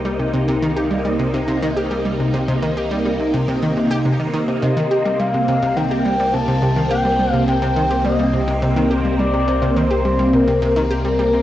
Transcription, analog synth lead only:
4.62 5.21 D#5 medium
5.19 5.78 F5 loud
5.76 6.35 G5 loud
6.33 6.90 A5 loud
6.91 7.32 G5 loud
7.32 7.44 F5 loud
7.48 8.01 G5 loud
8.05 8.87 D#5 medium
9.19 9.78 D5 loud
9.76 10.35 C5 loud
10.34 11.42 A#4 loud

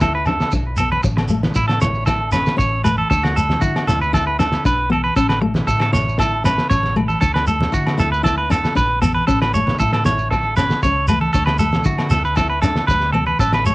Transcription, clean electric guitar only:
0.02 0.14 A4 medium
0.15 0.26 B4 medium
0.27 0.51 A4 medium
0.78 0.90 A4 medium
0.92 1.03 B4 medium
1.03 muted clean electric guitar stroke medium
1.17 muted clean electric guitar stroke medium
1.56 1.68 E4 medium
1.68 1.80 A4 medium
1.82 2.06 C#5 medium
2.06 2.31 A4 medium
2.33 2.57 B4 medium
2.58 2.83 C#5 medium
2.84 2.97 B4 medium
2.98 3.09 A4 medium
3.10 3.22 A4 medium
3.23 3.35 F#4 medium
3.36 3.60 A4 medium
3.61 3.86 F#4 medium
3.87 4.00 A4 medium
4.01 4.13 B4 medium
4.14 4.26 A4 medium
4.27 4.38 B4 medium
4.39 4.63 A4 medium
4.66 4.90 B4 medium
4.91 5.03 A4 medium
5.03 5.15 B4 medium
5.16 5.28 A4 medium
5.29 5.41 B4 medium
5.41 muted clean electric guitar stroke medium
5.67 5.80 A4 medium
5.82 5.93 A4 medium
5.93 6.18 C#5 medium
6.20 6.44 A4 medium
6.45 6.69 B4 medium
6.69 6.94 C#5 medium
7.08 7.20 A4 medium
7.21 7.34 A4 medium
7.34 7.47 B4 medium
7.48 7.72 A4 medium
7.74 7.98 F#4 medium
8.00 8.11 A4 medium
8.12 8.24 B4 medium
8.24 8.37 A4 medium
8.38 8.50 B4 medium
8.51 8.76 A4 medium
8.76 9.01 B4 medium
9.02 9.14 A4 medium
9.15 9.27 B4 medium
9.27 9.40 A4 medium
9.42 9.53 B4 medium
9.54 9.78 C#5 medium
9.80 9.92 A4 medium
9.93 10.05 A4 medium
10.06 10.30 C#5 medium
10.30 10.55 A4 medium
10.56 10.81 B4 medium
10.83 11.07 C#5 medium
11.08 11.21 B4 medium
11.21 11.32 A4 medium
11.33 11.46 A4 medium
11.46 11.59 B4 medium
11.59 11.84 A4 medium
11.86 12.10 F#4 medium
12.11 12.24 A4 medium
12.25 12.37 B4 medium
12.37 12.49 A4 medium
12.50 12.61 B4 medium
12.62 12.87 A4 medium
12.87 13.12 B4 medium
13.13 13.26 A4 medium
13.27 13.39 B4 medium
13.40 13.53 A4 medium
13.54 13.66 B4 medium
13.67 13.75 C#5 medium

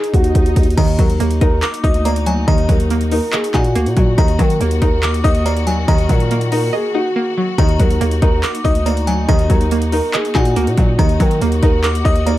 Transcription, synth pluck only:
0.78 1.84 D#3 loud
0.99 2.05 F#3 medium
1.20 2.04 A#3 medium
1.41 1.82 D#4 medium
1.63 2.69 A#4 loud
1.83 2.90 D#4 medium
2.05 2.89 A#3 medium
2.26 2.67 F#3 medium
2.48 3.54 D#3 loud
2.69 3.75 F#3 medium
2.91 3.74 A#3 medium
3.12 3.53 D#4 medium
3.33 4.18 D#5 loud
3.54 4.18 D#4 medium
3.75 4.18 A#3 loud
3.97 4.18 F#3 medium
4.18 5.24 D#3 medium
4.39 5.45 F#3 medium
4.61 5.45 A#3 medium
4.82 5.22 D#4 medium
5.03 6.09 A#4 loud
5.24 6.30 D#4 medium
5.46 6.30 A#3 medium
5.67 6.09 F#3 medium
5.88 6.95 D#3 loud
6.10 7.16 F#3 medium
6.31 7.15 A#3 loud
6.52 6.93 D#4 medium
6.73 7.58 D#5 loud
6.94 7.58 D#4 medium
7.16 7.58 A#3 loud
7.38 7.59 F#3 medium
7.59 8.65 D#3 loud
7.80 8.86 F#3 medium
8.01 8.85 A#3 medium
8.22 8.63 D#4 medium
8.43 9.50 A#4 loud
8.64 9.71 D#4 medium
8.86 9.70 A#3 medium
9.07 9.48 F#3 medium
9.29 10.35 D#3 loud
9.49 10.56 F#3 medium
9.72 10.55 A#3 medium
9.93 10.34 D#4 medium
10.14 10.99 D#5 medium
10.35 10.99 D#4 medium
10.56 10.99 A#3 loud
10.78 10.99 F#3 medium
10.99 12.05 D#3 loud
11.20 12.26 F#3 medium
11.42 12.25 A#3 medium
11.63 12.03 D#4 medium
11.84 12.38 A#4 loud
12.04 12.38 D#4 medium
12.27 12.38 A#3 medium

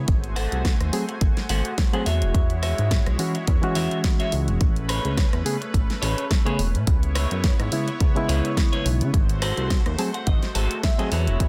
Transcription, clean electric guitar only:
0.36 0.72 G#4 medium
0.36 0.72 A4 loud
0.36 0.72 C5 medium
0.36 0.72 F#5 loud
1.09 muted clean electric guitar stroke loud
1.21 muted clean electric guitar stroke soft
1.50 1.72 G#4 medium
1.50 1.72 A4 loud
1.50 1.72 C5 loud
1.50 1.72 F#5 loud
1.93 2.05 G#4 medium
1.93 2.06 A4 medium
1.93 2.06 C5 medium
1.93 2.06 F#5 medium
2.06 2.53 F#4 medium
2.06 2.53 G#4 medium
2.06 2.53 C#5 medium
2.06 2.53 E5 medium
2.63 2.99 F#4 medium
2.63 2.99 G#4 medium
2.63 2.99 C#5 loud
2.63 2.99 E5 loud
3.35 muted clean electric guitar stroke medium
3.48 muted clean electric guitar stroke soft
3.76 3.98 F#4 loud
3.76 3.98 G#4 medium
3.76 3.98 C#5 loud
3.76 3.98 E5 loud
4.19 4.33 F#4 medium
4.19 4.32 G#4 medium
4.19 4.32 C#5 medium
4.19 4.33 E5 medium
4.48 muted clean electric guitar stroke soft
4.89 5.25 G#4 loud
4.89 5.25 A4 medium
4.89 5.25 B4 loud
4.89 5.25 C#5 loud
5.61 muted clean electric guitar stroke medium
5.74 muted clean electric guitar stroke soft
6.02 6.24 G#4 loud
6.02 6.24 A4 loud
6.02 6.24 B4 loud
6.02 6.24 C#5 loud
6.46 6.59 G#4 medium
6.46 6.59 A4 medium
6.46 6.59 B4 medium
6.46 6.59 C#5 medium
6.74 muted clean electric guitar stroke soft
7.15 7.52 E4 medium
7.15 7.52 G#4 medium
7.15 7.52 B4 loud
7.15 7.52 C#5 loud
7.88 muted clean electric guitar stroke medium
8.00 muted clean electric guitar stroke soft
8.29 8.51 E4 loud
8.29 8.51 G#4 loud
8.29 8.51 B4 loud
8.29 8.51 C#5 loud
8.72 8.85 E4 medium
8.72 8.85 G#4 medium
8.72 8.85 B4 medium
8.72 8.85 C#5 medium
9.01 muted clean electric guitar stroke soft
9.42 9.78 F#4 loud
9.42 9.78 G#4 loud
9.42 9.78 A4 loud
9.42 9.78 C5 loud
9.99 10.13 A5 medium
10.14 10.26 F#5 medium
10.14 muted clean electric guitar stroke medium
10.27 10.80 D#5 medium
10.27 muted clean electric guitar stroke soft
10.55 10.77 F#4 medium
10.55 10.77 G#4 medium
10.55 10.77 A4 loud
10.55 10.77 C5 loud
10.84 11.11 E5 medium
10.99 11.11 F#4 medium
10.99 11.11 G#4 medium
10.99 11.12 A4 medium
10.99 11.12 D#5 medium
11.12 11.48 E4 medium
11.12 11.48 F#4 medium
11.12 11.48 G#4 medium
11.12 11.48 C#5 loud

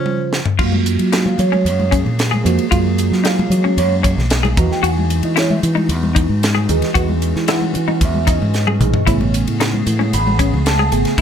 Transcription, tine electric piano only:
0.00 0.39 C#3 medium
0.00 0.39 F3 medium
0.00 0.39 F4 medium
0.00 0.39 C5 medium
0.59 1.39 G#3 medium
0.59 1.40 A#3 medium
0.59 1.39 F4 medium
0.59 1.40 F#4 medium
1.15 1.39 F5 medium
1.40 1.65 C#5 medium
1.67 1.92 C#5 medium
2.44 2.64 F3 medium
2.44 2.65 G#3 medium
2.44 2.65 A#3 medium
2.44 2.65 F#4 medium
2.72 3.51 G#3 medium
2.72 3.52 A#3 medium
2.72 3.51 F4 medium
2.72 3.52 F#4 medium
3.27 3.52 F5 medium
3.51 3.77 C#5 medium
3.79 3.94 C#5 medium
4.58 5.42 E3 medium
4.58 5.42 G#3 medium
4.58 5.42 D#4 medium
4.58 5.43 F#4 medium
4.58 4.70 A#5 medium
4.72 4.84 G5 medium
4.85 5.22 G#5 medium
5.25 5.37 D#5 medium
5.39 5.51 C#5 medium
5.51 5.58 E5 medium
6.69 6.89 E3 medium
6.69 6.89 G#3 medium
6.69 6.89 D#4 medium
6.69 6.90 G#4 medium
6.95 7.75 E3 medium
6.95 7.75 G#3 medium
6.95 7.76 D#4 medium
6.95 7.76 G#4 medium
7.50 7.98 F#5 medium
8.05 8.29 E5 medium
8.29 9.04 D#5 medium
8.80 9.00 E3 medium
8.80 9.00 G#3 medium
8.80 9.01 D#4 medium
8.80 9.01 G#4 medium
9.06 9.85 C#3 medium
9.06 9.86 A3 medium
9.06 9.86 B3 medium
9.06 9.86 G#4 medium
9.06 9.33 C#5 medium
10.14 10.62 B5 medium
10.67 10.92 A5 medium
10.91 11.11 C#3 medium
10.91 11.11 A3 medium
10.91 11.12 B3 medium
10.91 11.11 G#4 medium
10.91 11.21 G#5 medium
11.17 11.21 C#3 medium
11.17 11.21 A3 medium

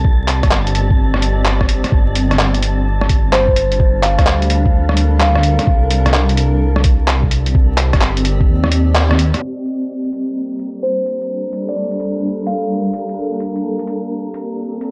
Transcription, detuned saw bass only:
0.00 0.42 C2 loud
0.43 1.37 G1 loud
1.37 1.82 G1 medium
1.92 4.17 G1 loud
4.19 5.57 D2 medium
5.67 7.92 C2 loud
7.94 8.48 G1 loud
8.49 9.32 D#2 medium

